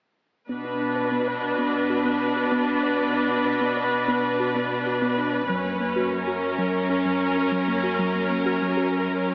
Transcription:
0.49 B2 B3 D4 B4
0.65 D4
0.80 D4
0.96 B4
1.12 B3
1.28 B4
1.59 B3
1.90 F#4
2.05 B3
2.36 F#4
2.52 B3
2.68 D4
2.83 B4
2.99 B3
3.14 D4
3.30 D4
3.46 B4
3.61 B3
3.77 B4
4.08 B3
4.40 F#4
4.55 B3
4.86 F#4
5.02 B3
5.18 D4
5.33 B4
5.49 F#2 F#3 C#4
5.65 A#3
5.80 A#3
5.96 F#4
6.11 F#3 A#4
6.27 F#4
6.58 F#3
6.90 C#4
7.05 F#3
7.37 C#4
7.52 F#3
7.68 A#3
7.83 F#4
7.99 F#3
8.15 A#3
8.30 A#3
8.46 F#4
8.62 F#3
8.77 F#4
9.09 F#3

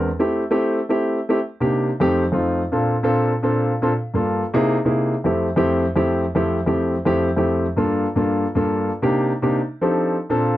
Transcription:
0.19 A3 C4 E4 G4
0.51 A3 C4 E4 G4
0.89 A3 C4 E4 G4
1.29 A3 C4 E4 G4
1.60 C3 A#3 D4 D#4 G4
2.00 F2 A3 C4 D#4 G4
2.32 F2 A3 C4 D#4 F4
2.72 A#2 C4 D4 F4 A4
3.03 A#2 C4 D4 F4 A4
3.43 A#2 C4 D4 F4 A4
3.82 A#2 C4 D4 F4 A4
4.14 G2 A#3 D4 F4 A4
4.54 C3 A#3 D#4 E4 G#4
4.85 C3 A#3 D#4 E4 G#4
5.24 F2 A3 C4 E4 G4
5.56 F2 A3 C4 E4 G4
5.96 F2 A3 C4 E4 G4
6.35 F2 A3 C4 E4 G4
6.66 F2 A3 C4 E4 G4
7.05 F2 A3 C4 E4 G4
7.36 F2 A3 C4 E4 G4
7.77 G2 A#3 D4 F4 A4
8.16 G2 A#3 D4 F4 A4
8.55 G2 A#3 D4 F4 A4
9.02 C3 A#3 D4 D#4 G4
9.42 C3 A#3 D4 D#4 G4
9.81 F3 C4 D4 D#4 G4 A4
10.30 A#2 C4 D4 F4 A4

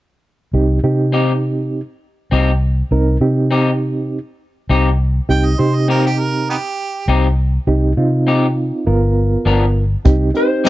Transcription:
0.53 C2 C4 D#4 G4
0.84 C3 C4 D#4 G4
1.12 C4 D#4 G4
2.31 C2 C4 D#4 G4
2.91 C2 C4 D#4 A#4
3.20 C3 C4 D#4 G4
3.51 C4 D#4 G4
4.69 C2 C4 D#4 G4
5.29 C2 C4 D#4 G4 G5
5.45 D#5
5.59 C3 C4 D#4 G4 C5
5.75 D#5
5.88 C4 D#4 G4 A#4
6.07 G4
6.19 A#4
6.50 B3 D#4 G4
7.08 C2 C4 D#4 G4
7.67 C2 C4 D#4 G4
7.97 C3 C4 D#4 F4
8.27 C4 D#4 G4
8.87 G1 B3 F4 A#4
9.45 G1 F3 B3 D4 A#4
10.05 C2 C4 D#4 G4, kick, closed hi-hat
10.34 C4 D#4 G4 C5, closed hi-hat
10.64 G3 C4 D#4 G4, closed hi-hat

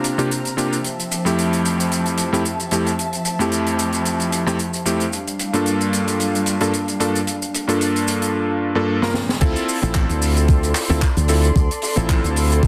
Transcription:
Already playing: C3 A#3 C4 D4 F4 G4 A#5 F6
0.04 closed hi-hat, shaker
0.18 C3 A#3 D4 F4 G4, closed hi-hat, shaker
0.31 closed hi-hat, shaker
0.45 closed hi-hat, shaker
0.57 C3 A#3 D4 F4 G4, closed hi-hat, shaker
0.73 closed hi-hat, shaker
0.84 F3 E5 A5, closed hi-hat, shaker
1.00 closed hi-hat, shaker
1.12 closed hi-hat, shaker
1.25 F2 A3 C4 E4 G4, closed hi-hat, shaker
1.39 closed hi-hat, shaker
1.53 closed hi-hat, shaker
1.65 closed hi-hat, shaker
1.80 closed hi-hat, shaker
1.92 closed hi-hat, shaker
2.06 closed hi-hat, shaker
2.18 closed hi-hat, shaker
2.32 F2 A3 C4 E4 G4, closed hi-hat, shaker
2.45 closed hi-hat, shaker
2.60 closed hi-hat, shaker
2.71 F2 A3 C4 E4 G4, closed hi-hat, shaker
2.87 closed hi-hat, shaker
2.99 closed hi-hat, shaker
3.13 closed hi-hat, shaker
3.25 closed hi-hat, shaker
3.39 F2 A3 C4 E4 G4, closed hi-hat, shaker
3.52 closed hi-hat, shaker
3.67 closed hi-hat, shaker
3.79 closed hi-hat, shaker
3.93 closed hi-hat, shaker
4.05 closed hi-hat, shaker
4.20 closed hi-hat, shaker
4.32 closed hi-hat, shaker
4.46 F2 A3 C4 E4 G4, closed hi-hat, shaker
4.59 closed hi-hat, shaker
4.74 closed hi-hat, shaker
4.85 F2 A3 C4 E4 G4, closed hi-hat, shaker
5.00 closed hi-hat, shaker
5.13 G3 D4 F5, closed hi-hat, shaker
5.28 closed hi-hat, shaker
5.39 closed hi-hat, shaker
5.53 G2 A#3 D4 F4 A4, closed hi-hat, shaker
5.66 closed hi-hat, shaker
5.81 closed hi-hat, shaker
5.93 closed hi-hat, shaker
6.08 closed hi-hat, shaker
6.20 closed hi-hat, shaker
6.35 closed hi-hat, shaker
6.46 closed hi-hat, shaker
6.61 G2 A#3 D4 F4 A4, closed hi-hat, shaker
6.74 closed hi-hat, shaker
6.88 closed hi-hat, shaker
7.00 G2 A#3 D4 F4 A4, closed hi-hat, shaker
7.15 closed hi-hat, shaker
7.27 closed hi-hat, shaker
7.42 closed hi-hat, shaker
7.55 closed hi-hat, shaker
7.67 G2 A#3 D4 F4 A4, closed hi-hat, shaker
7.81 closed hi-hat, shaker
7.96 closed hi-hat, shaker
8.08 closed hi-hat, shaker
8.22 closed hi-hat, shaker
8.75 G2 A#3 D4 F4 A4
9.02 G2 A#3 D4 F4 A#4, snare
9.14 snare
9.29 snare
9.41 D2 C4 E4 F4 A4 D5 C6, kick, closed hi-hat, crash, shaker
9.56 closed hi-hat, shaker
9.68 open hi-hat, shaker
9.82 A1 C4 E4 F4 A4, closed hi-hat, shaker
9.94 kick, clap, closed hi-hat, shaker
10.09 D2, closed hi-hat, shaker
10.22 open hi-hat, shaker
10.37 closed hi-hat, shaker
10.48 kick, closed hi-hat, shaker
10.63 closed hi-hat, shaker
10.75 clap, open hi-hat, shaker
10.89 D2 C4 E4 F4 A4, closed hi-hat, shaker
11.02 kick, clap, closed hi-hat, shaker
11.17 D2, closed hi-hat, shaker
11.28 C4 E4 F4 A4, open hi-hat, shaker
11.44 closed hi-hat, shaker
11.56 D2, kick, closed hi-hat, shaker
11.71 closed hi-hat, shaker
11.82 open hi-hat, shaker
11.96 A1 C4 E4 F4 A4, closed hi-hat, shaker
12.09 kick, clap, closed hi-hat, shaker
12.24 D2, closed hi-hat, shaker
12.36 open hi-hat, shaker
12.52 closed hi-hat, shaker
12.63 A1, kick, closed hi-hat, shaker

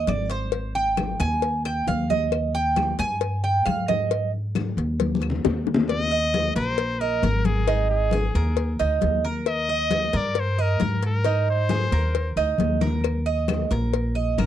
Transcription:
0.07 G#1 D5, cowbell, high conga, claves
0.30 C5, cowbell
0.52 cowbell, high conga
0.75 G5, high conga
0.97 cowbell, high conga, claves
1.20 D#2 G#5, cowbell, high conga
1.42 cowbell, high conga
1.65 G5, cowbell, high conga, claves
1.87 D#2 F5, cowbell, high conga
2.10 D#5, high conga
2.32 cowbell, high conga, claves
2.55 G5, high conga
2.76 cowbell, high conga, claves
2.99 G2 G#5, cowbell, high conga
3.21 cowbell, high conga
3.44 G5, high conga
3.66 G#2 F5, cowbell, high conga, claves
3.88 D#5, cowbell, high conga
4.11 cowbell, high conga
4.34 high conga
4.55 cowbell, high conga, claves
4.77 D#2, cowbell, high conga
5.00 cowbell, high conga
5.15 high conga
5.22 cowbell, claves
5.30 low conga
5.45 D#2, cowbell, high bongo, low conga
5.67 low bongo
5.74 low conga
5.89 D#5, cowbell, high conga
6.11 D#5, high conga
6.34 cowbell, high conga
6.56 A#1 A#4 C5, cowbell, high conga
6.78 cowbell, high conga
7.00 A#4 D#5, high conga
7.22 G#1 A#4, cowbell, high conga
7.44 G#4, cowbell, high conga
7.67 D#4, cowbell, high conga
7.89 G#4, high conga
8.11 G#4, cowbell, high conga
8.34 D#2 A#4, cowbell, high conga
8.57 cowbell, high conga
8.79 D2 D#4, cowbell, high conga
9.01 D#2, cowbell, high conga
9.25 A#4
9.46 D#5, cowbell, high conga
9.68 D#5, high conga
9.91 cowbell, high conga
10.13 G2 A#4, cowbell, high conga
10.17 D5
10.35 cowbell, high conga
10.40 C5
10.57 D#5, high conga
10.62 A#4
10.80 G#2 A#4, cowbell, high conga
11.03 A#4, cowbell
11.25 D#4, cowbell, high conga
11.47 C5, high conga
11.69 G#4, cowbell, high conga
11.91 D#2 A#4, cowbell, high conga
12.14 cowbell, high conga
12.36 D2 D#4, cowbell, high conga
12.58 D#2, cowbell, high conga
12.81 A#4, high conga
13.04 cowbell, high conga, claves
13.26 D#5, high conga
13.48 cowbell, high conga, claves
13.71 A#1 A#4, cowbell, high conga
13.93 cowbell, high conga
14.15 D#5, high conga
14.38 G#1 A#4, cowbell, high conga, claves

